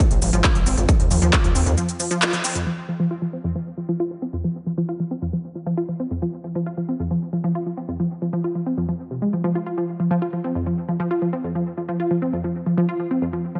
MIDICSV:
0, 0, Header, 1, 4, 480
1, 0, Start_track
1, 0, Key_signature, -4, "minor"
1, 0, Tempo, 444444
1, 958, Time_signature, 4, 2, 24, 8
1, 14686, End_track
2, 0, Start_track
2, 0, Title_t, "Synth pluck"
2, 0, Program_c, 0, 84
2, 238, Note_on_c, 0, 53, 74
2, 316, Note_off_c, 0, 53, 0
2, 357, Note_on_c, 0, 53, 103
2, 435, Note_off_c, 0, 53, 0
2, 477, Note_on_c, 0, 65, 83
2, 592, Note_off_c, 0, 65, 0
2, 596, Note_on_c, 0, 53, 77
2, 644, Note_off_c, 0, 53, 0
2, 717, Note_on_c, 0, 60, 77
2, 796, Note_off_c, 0, 60, 0
2, 836, Note_on_c, 0, 41, 100
2, 915, Note_off_c, 0, 41, 0
2, 956, Note_on_c, 0, 53, 81
2, 1035, Note_off_c, 0, 53, 0
2, 1196, Note_on_c, 0, 53, 81
2, 1275, Note_off_c, 0, 53, 0
2, 1316, Note_on_c, 0, 53, 102
2, 1395, Note_off_c, 0, 53, 0
2, 1435, Note_on_c, 0, 65, 83
2, 1550, Note_off_c, 0, 65, 0
2, 1555, Note_on_c, 0, 53, 77
2, 1603, Note_off_c, 0, 53, 0
2, 1675, Note_on_c, 0, 60, 81
2, 1755, Note_off_c, 0, 60, 0
2, 1796, Note_on_c, 0, 41, 104
2, 1875, Note_off_c, 0, 41, 0
2, 1916, Note_on_c, 0, 53, 84
2, 1995, Note_off_c, 0, 53, 0
2, 2157, Note_on_c, 0, 53, 75
2, 2235, Note_off_c, 0, 53, 0
2, 2277, Note_on_c, 0, 53, 101
2, 2355, Note_off_c, 0, 53, 0
2, 2397, Note_on_c, 0, 65, 82
2, 2511, Note_off_c, 0, 65, 0
2, 2517, Note_on_c, 0, 53, 76
2, 2564, Note_off_c, 0, 53, 0
2, 2637, Note_on_c, 0, 60, 81
2, 2716, Note_off_c, 0, 60, 0
2, 2757, Note_on_c, 0, 41, 96
2, 2835, Note_off_c, 0, 41, 0
2, 2878, Note_on_c, 0, 53, 77
2, 2956, Note_off_c, 0, 53, 0
2, 3117, Note_on_c, 0, 53, 72
2, 3196, Note_off_c, 0, 53, 0
2, 3237, Note_on_c, 0, 53, 91
2, 3315, Note_off_c, 0, 53, 0
2, 3356, Note_on_c, 0, 65, 78
2, 3471, Note_off_c, 0, 65, 0
2, 3476, Note_on_c, 0, 53, 74
2, 3524, Note_off_c, 0, 53, 0
2, 3597, Note_on_c, 0, 60, 75
2, 3676, Note_off_c, 0, 60, 0
2, 3717, Note_on_c, 0, 41, 98
2, 3796, Note_off_c, 0, 41, 0
2, 3838, Note_on_c, 0, 53, 77
2, 3916, Note_off_c, 0, 53, 0
2, 4077, Note_on_c, 0, 53, 75
2, 4156, Note_off_c, 0, 53, 0
2, 4198, Note_on_c, 0, 53, 98
2, 4276, Note_off_c, 0, 53, 0
2, 4318, Note_on_c, 0, 65, 77
2, 4432, Note_off_c, 0, 65, 0
2, 4438, Note_on_c, 0, 53, 74
2, 4485, Note_off_c, 0, 53, 0
2, 4558, Note_on_c, 0, 60, 73
2, 4636, Note_off_c, 0, 60, 0
2, 4678, Note_on_c, 0, 41, 97
2, 4756, Note_off_c, 0, 41, 0
2, 4798, Note_on_c, 0, 53, 82
2, 4876, Note_off_c, 0, 53, 0
2, 5037, Note_on_c, 0, 53, 71
2, 5116, Note_off_c, 0, 53, 0
2, 5158, Note_on_c, 0, 53, 94
2, 5236, Note_off_c, 0, 53, 0
2, 5278, Note_on_c, 0, 65, 79
2, 5392, Note_off_c, 0, 65, 0
2, 5398, Note_on_c, 0, 53, 73
2, 5445, Note_off_c, 0, 53, 0
2, 5518, Note_on_c, 0, 60, 73
2, 5596, Note_off_c, 0, 60, 0
2, 5638, Note_on_c, 0, 41, 98
2, 5716, Note_off_c, 0, 41, 0
2, 5758, Note_on_c, 0, 53, 78
2, 5836, Note_off_c, 0, 53, 0
2, 5998, Note_on_c, 0, 53, 73
2, 6076, Note_off_c, 0, 53, 0
2, 6117, Note_on_c, 0, 53, 100
2, 6196, Note_off_c, 0, 53, 0
2, 6236, Note_on_c, 0, 65, 81
2, 6351, Note_off_c, 0, 65, 0
2, 6357, Note_on_c, 0, 53, 72
2, 6404, Note_off_c, 0, 53, 0
2, 6478, Note_on_c, 0, 60, 74
2, 6556, Note_off_c, 0, 60, 0
2, 6597, Note_on_c, 0, 41, 97
2, 6676, Note_off_c, 0, 41, 0
2, 6718, Note_on_c, 0, 53, 84
2, 6796, Note_off_c, 0, 53, 0
2, 6957, Note_on_c, 0, 53, 75
2, 7035, Note_off_c, 0, 53, 0
2, 7078, Note_on_c, 0, 53, 93
2, 7156, Note_off_c, 0, 53, 0
2, 7197, Note_on_c, 0, 65, 80
2, 7311, Note_off_c, 0, 65, 0
2, 7317, Note_on_c, 0, 53, 72
2, 7364, Note_off_c, 0, 53, 0
2, 7437, Note_on_c, 0, 60, 75
2, 7515, Note_off_c, 0, 60, 0
2, 7557, Note_on_c, 0, 41, 96
2, 7636, Note_off_c, 0, 41, 0
2, 7676, Note_on_c, 0, 53, 80
2, 7755, Note_off_c, 0, 53, 0
2, 7916, Note_on_c, 0, 53, 73
2, 7995, Note_off_c, 0, 53, 0
2, 8035, Note_on_c, 0, 53, 98
2, 8115, Note_off_c, 0, 53, 0
2, 8156, Note_on_c, 0, 65, 81
2, 8271, Note_off_c, 0, 65, 0
2, 8277, Note_on_c, 0, 53, 72
2, 8324, Note_off_c, 0, 53, 0
2, 8396, Note_on_c, 0, 60, 73
2, 8475, Note_off_c, 0, 60, 0
2, 8517, Note_on_c, 0, 41, 98
2, 8595, Note_off_c, 0, 41, 0
2, 8637, Note_on_c, 0, 53, 80
2, 8716, Note_off_c, 0, 53, 0
2, 8877, Note_on_c, 0, 53, 75
2, 8956, Note_off_c, 0, 53, 0
2, 8997, Note_on_c, 0, 53, 95
2, 9076, Note_off_c, 0, 53, 0
2, 9118, Note_on_c, 0, 65, 79
2, 9232, Note_off_c, 0, 65, 0
2, 9237, Note_on_c, 0, 53, 72
2, 9284, Note_off_c, 0, 53, 0
2, 9357, Note_on_c, 0, 60, 74
2, 9435, Note_off_c, 0, 60, 0
2, 9477, Note_on_c, 0, 41, 102
2, 9556, Note_off_c, 0, 41, 0
2, 9597, Note_on_c, 0, 53, 78
2, 9675, Note_off_c, 0, 53, 0
2, 9837, Note_on_c, 0, 48, 70
2, 9916, Note_off_c, 0, 48, 0
2, 9957, Note_on_c, 0, 56, 75
2, 10071, Note_off_c, 0, 56, 0
2, 10078, Note_on_c, 0, 53, 79
2, 10184, Note_off_c, 0, 53, 0
2, 10197, Note_on_c, 0, 53, 98
2, 10276, Note_off_c, 0, 53, 0
2, 10317, Note_on_c, 0, 65, 75
2, 10396, Note_off_c, 0, 65, 0
2, 10437, Note_on_c, 0, 65, 73
2, 10552, Note_off_c, 0, 65, 0
2, 10558, Note_on_c, 0, 53, 81
2, 10636, Note_off_c, 0, 53, 0
2, 10797, Note_on_c, 0, 53, 75
2, 10876, Note_off_c, 0, 53, 0
2, 10917, Note_on_c, 0, 53, 100
2, 10995, Note_off_c, 0, 53, 0
2, 11037, Note_on_c, 0, 65, 77
2, 11151, Note_off_c, 0, 65, 0
2, 11157, Note_on_c, 0, 53, 73
2, 11204, Note_off_c, 0, 53, 0
2, 11277, Note_on_c, 0, 60, 73
2, 11356, Note_off_c, 0, 60, 0
2, 11397, Note_on_c, 0, 41, 95
2, 11476, Note_off_c, 0, 41, 0
2, 11517, Note_on_c, 0, 53, 78
2, 11596, Note_off_c, 0, 53, 0
2, 11757, Note_on_c, 0, 53, 72
2, 11835, Note_off_c, 0, 53, 0
2, 11877, Note_on_c, 0, 53, 100
2, 11956, Note_off_c, 0, 53, 0
2, 11996, Note_on_c, 0, 65, 82
2, 12111, Note_off_c, 0, 65, 0
2, 12117, Note_on_c, 0, 53, 73
2, 12164, Note_off_c, 0, 53, 0
2, 12237, Note_on_c, 0, 60, 75
2, 12315, Note_off_c, 0, 60, 0
2, 12357, Note_on_c, 0, 41, 93
2, 12435, Note_off_c, 0, 41, 0
2, 12477, Note_on_c, 0, 53, 80
2, 12555, Note_off_c, 0, 53, 0
2, 12717, Note_on_c, 0, 53, 75
2, 12795, Note_off_c, 0, 53, 0
2, 12836, Note_on_c, 0, 53, 95
2, 12915, Note_off_c, 0, 53, 0
2, 12957, Note_on_c, 0, 65, 81
2, 13071, Note_off_c, 0, 65, 0
2, 13077, Note_on_c, 0, 53, 74
2, 13124, Note_off_c, 0, 53, 0
2, 13198, Note_on_c, 0, 60, 76
2, 13276, Note_off_c, 0, 60, 0
2, 13317, Note_on_c, 0, 41, 99
2, 13396, Note_off_c, 0, 41, 0
2, 13437, Note_on_c, 0, 53, 78
2, 13515, Note_off_c, 0, 53, 0
2, 13677, Note_on_c, 0, 53, 73
2, 13755, Note_off_c, 0, 53, 0
2, 13797, Note_on_c, 0, 53, 100
2, 13875, Note_off_c, 0, 53, 0
2, 13917, Note_on_c, 0, 65, 83
2, 14032, Note_off_c, 0, 65, 0
2, 14037, Note_on_c, 0, 53, 75
2, 14084, Note_off_c, 0, 53, 0
2, 14158, Note_on_c, 0, 60, 75
2, 14236, Note_off_c, 0, 60, 0
2, 14278, Note_on_c, 0, 41, 96
2, 14356, Note_off_c, 0, 41, 0
2, 14397, Note_on_c, 0, 53, 80
2, 14475, Note_off_c, 0, 53, 0
2, 14637, Note_on_c, 0, 53, 77
2, 14686, Note_off_c, 0, 53, 0
2, 14686, End_track
3, 0, Start_track
3, 0, Title_t, "Analog synth bass"
3, 0, Program_c, 1, 38
3, 118, Note_on_c, 1, 34, 85
3, 213, Note_off_c, 1, 34, 0
3, 237, Note_on_c, 1, 32, 102
3, 333, Note_off_c, 1, 32, 0
3, 358, Note_on_c, 1, 32, 97
3, 453, Note_off_c, 1, 32, 0
3, 597, Note_on_c, 1, 32, 91
3, 692, Note_off_c, 1, 32, 0
3, 717, Note_on_c, 1, 32, 103
3, 813, Note_off_c, 1, 32, 0
3, 836, Note_on_c, 1, 32, 93
3, 932, Note_off_c, 1, 32, 0
3, 1076, Note_on_c, 1, 39, 85
3, 1172, Note_off_c, 1, 39, 0
3, 1197, Note_on_c, 1, 39, 94
3, 1292, Note_off_c, 1, 39, 0
3, 1316, Note_on_c, 1, 39, 91
3, 1412, Note_off_c, 1, 39, 0
3, 1556, Note_on_c, 1, 39, 90
3, 1652, Note_off_c, 1, 39, 0
3, 1675, Note_on_c, 1, 39, 100
3, 1771, Note_off_c, 1, 39, 0
3, 1796, Note_on_c, 1, 39, 91
3, 1892, Note_off_c, 1, 39, 0
3, 14686, End_track
4, 0, Start_track
4, 0, Title_t, "Drums"
4, 117, Note_on_c, 9, 42, 69
4, 117, Note_on_c, 9, 82, 31
4, 225, Note_off_c, 9, 42, 0
4, 225, Note_off_c, 9, 82, 0
4, 237, Note_on_c, 9, 46, 106
4, 237, Note_on_c, 9, 82, 80
4, 345, Note_off_c, 9, 46, 0
4, 345, Note_off_c, 9, 82, 0
4, 358, Note_on_c, 9, 42, 66
4, 358, Note_on_c, 9, 82, 33
4, 466, Note_off_c, 9, 42, 0
4, 466, Note_off_c, 9, 82, 0
4, 477, Note_on_c, 9, 39, 118
4, 477, Note_on_c, 9, 42, 66
4, 477, Note_on_c, 9, 82, 44
4, 478, Note_on_c, 9, 36, 119
4, 585, Note_off_c, 9, 39, 0
4, 585, Note_off_c, 9, 42, 0
4, 585, Note_off_c, 9, 82, 0
4, 586, Note_off_c, 9, 36, 0
4, 597, Note_on_c, 9, 42, 67
4, 597, Note_on_c, 9, 82, 30
4, 705, Note_off_c, 9, 42, 0
4, 705, Note_off_c, 9, 82, 0
4, 717, Note_on_c, 9, 46, 100
4, 717, Note_on_c, 9, 82, 80
4, 825, Note_off_c, 9, 46, 0
4, 825, Note_off_c, 9, 82, 0
4, 838, Note_on_c, 9, 42, 69
4, 838, Note_on_c, 9, 82, 33
4, 946, Note_off_c, 9, 42, 0
4, 946, Note_off_c, 9, 82, 0
4, 957, Note_on_c, 9, 36, 110
4, 958, Note_on_c, 9, 42, 70
4, 958, Note_on_c, 9, 82, 43
4, 1065, Note_off_c, 9, 36, 0
4, 1066, Note_off_c, 9, 42, 0
4, 1066, Note_off_c, 9, 82, 0
4, 1077, Note_on_c, 9, 42, 67
4, 1185, Note_off_c, 9, 42, 0
4, 1197, Note_on_c, 9, 46, 98
4, 1197, Note_on_c, 9, 82, 73
4, 1305, Note_off_c, 9, 46, 0
4, 1305, Note_off_c, 9, 82, 0
4, 1318, Note_on_c, 9, 42, 71
4, 1318, Note_on_c, 9, 82, 33
4, 1426, Note_off_c, 9, 42, 0
4, 1426, Note_off_c, 9, 82, 0
4, 1437, Note_on_c, 9, 36, 116
4, 1438, Note_on_c, 9, 39, 117
4, 1438, Note_on_c, 9, 42, 70
4, 1438, Note_on_c, 9, 82, 44
4, 1545, Note_off_c, 9, 36, 0
4, 1546, Note_off_c, 9, 39, 0
4, 1546, Note_off_c, 9, 42, 0
4, 1546, Note_off_c, 9, 82, 0
4, 1558, Note_on_c, 9, 42, 70
4, 1558, Note_on_c, 9, 82, 30
4, 1666, Note_off_c, 9, 42, 0
4, 1666, Note_off_c, 9, 82, 0
4, 1678, Note_on_c, 9, 46, 98
4, 1678, Note_on_c, 9, 82, 75
4, 1786, Note_off_c, 9, 46, 0
4, 1786, Note_off_c, 9, 82, 0
4, 1798, Note_on_c, 9, 42, 67
4, 1798, Note_on_c, 9, 82, 33
4, 1906, Note_off_c, 9, 42, 0
4, 1906, Note_off_c, 9, 82, 0
4, 1918, Note_on_c, 9, 42, 68
4, 1918, Note_on_c, 9, 82, 41
4, 2026, Note_off_c, 9, 42, 0
4, 2026, Note_off_c, 9, 82, 0
4, 2038, Note_on_c, 9, 42, 69
4, 2038, Note_on_c, 9, 82, 32
4, 2146, Note_off_c, 9, 42, 0
4, 2146, Note_off_c, 9, 82, 0
4, 2158, Note_on_c, 9, 46, 103
4, 2158, Note_on_c, 9, 82, 77
4, 2266, Note_off_c, 9, 46, 0
4, 2266, Note_off_c, 9, 82, 0
4, 2278, Note_on_c, 9, 42, 71
4, 2278, Note_on_c, 9, 82, 33
4, 2386, Note_off_c, 9, 42, 0
4, 2386, Note_off_c, 9, 82, 0
4, 2398, Note_on_c, 9, 39, 116
4, 2398, Note_on_c, 9, 42, 67
4, 2398, Note_on_c, 9, 82, 43
4, 2506, Note_off_c, 9, 39, 0
4, 2506, Note_off_c, 9, 42, 0
4, 2506, Note_off_c, 9, 82, 0
4, 2518, Note_on_c, 9, 42, 70
4, 2518, Note_on_c, 9, 82, 30
4, 2626, Note_off_c, 9, 42, 0
4, 2626, Note_off_c, 9, 82, 0
4, 2638, Note_on_c, 9, 46, 104
4, 2638, Note_on_c, 9, 82, 74
4, 2746, Note_off_c, 9, 46, 0
4, 2746, Note_off_c, 9, 82, 0
4, 2758, Note_on_c, 9, 42, 67
4, 2758, Note_on_c, 9, 82, 34
4, 2866, Note_off_c, 9, 42, 0
4, 2866, Note_off_c, 9, 82, 0
4, 14686, End_track
0, 0, End_of_file